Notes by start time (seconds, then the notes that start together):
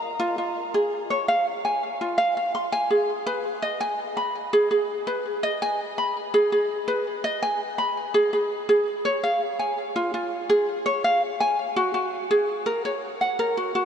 0.20 F4
0.38 F4
0.74 G#4
1.10 C#5
1.28 F5
1.65 G#5
2.01 F4
2.18 F5
2.37 F5
2.55 C6
2.72 G#5
2.90 G#4
3.26 B4
3.62 D#5
3.81 G#5
4.17 B5
4.53 G#4
4.71 G#4
5.07 B4
5.43 D#5
5.62 G#5
5.98 B5
6.34 G#4
6.52 G#4
6.88 B4
7.24 D#5
7.42 G#5
7.78 B5
8.14 G#4
8.33 G#4
8.69 G#4
9.05 C#5
9.23 F5
9.59 G#5
9.96 F4
10.14 F4
10.49 G#4
10.86 C#5
11.04 F5
11.40 G#5
11.76 F#4
11.94 F#4
12.31 G#4
12.66 A#4
12.85 C#5
13.21 F#5
13.39 A#4
13.57 F#4
13.75 F#4